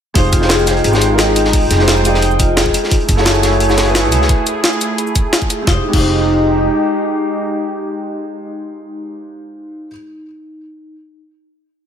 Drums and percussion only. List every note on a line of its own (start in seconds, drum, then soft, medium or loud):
0.15 kick loud
0.15 closed hi-hat medium
0.24 closed hi-hat soft
0.33 kick loud
0.33 closed hi-hat medium
0.33 closed hi-hat loud
0.33 cabasa medium
0.42 snare soft
0.49 snare loud
0.49 closed hi-hat medium
0.59 closed hi-hat soft
0.59 cabasa soft
0.66 snare soft
0.66 closed hi-hat medium
0.66 cabasa medium
0.77 closed hi-hat soft
0.84 closed hi-hat medium
0.93 snare medium
0.93 cabasa soft
1.01 closed hi-hat medium
1.01 cabasa medium
1.18 snare loud
1.18 closed hi-hat medium
1.36 closed hi-hat loud
1.36 closed hi-hat medium
1.36 cabasa medium
1.45 snare medium
1.53 kick loud
1.53 closed hi-hat medium
1.53 open hi-hat medium
1.71 snare soft
1.71 closed hi-hat loud
1.71 closed hi-hat medium
1.71 cabasa medium
1.79 snare soft
1.87 snare loud
1.87 closed hi-hat medium
1.97 cabasa soft
2.05 closed hi-hat medium
2.05 closed hi-hat loud
2.05 cabasa medium
2.14 snare medium
2.22 closed hi-hat medium
2.31 cabasa soft
2.39 kick loud
2.39 closed hi-hat medium
2.39 closed hi-hat loud
2.39 cabasa medium
2.57 snare loud
2.57 closed hi-hat medium
2.66 kick medium
2.74 closed hi-hat medium
2.74 closed hi-hat loud
2.74 cabasa medium
2.84 snare soft
2.90 kick loud
2.90 closed hi-hat medium
3.00 closed hi-hat soft
3.08 kick loud
3.08 closed hi-hat medium
3.08 cabasa medium
3.17 snare soft
3.25 snare loud
3.25 closed hi-hat medium
3.35 cabasa soft
3.43 snare soft
3.43 closed hi-hat medium
3.43 cabasa medium
3.53 closed hi-hat soft
3.60 closed hi-hat medium
3.69 snare medium
3.69 cabasa soft
3.78 snare loud
3.78 closed hi-hat medium
3.78 cabasa medium
3.87 closed hi-hat soft
3.95 snare loud
3.95 snare soft
3.95 closed hi-hat medium
4.04 closed hi-hat soft
4.12 closed hi-hat medium
4.12 cabasa medium
4.22 snare soft
4.29 kick loud
4.29 closed hi-hat medium
4.47 closed hi-hat medium
4.47 cabasa medium
4.64 snare loud
4.64 closed hi-hat medium
4.73 cabasa soft
4.81 closed hi-hat medium
4.81 cabasa medium
4.98 closed hi-hat medium
5.07 cabasa soft
5.15 kick loud
5.15 closed hi-hat medium
5.15 cabasa medium
5.33 snare loud
5.33 closed hi-hat medium
5.42 kick medium
5.42 cabasa soft
5.50 closed hi-hat medium
5.50 cabasa medium
5.67 kick loud
5.67 snare medium
5.93 kick loud
5.93 crash medium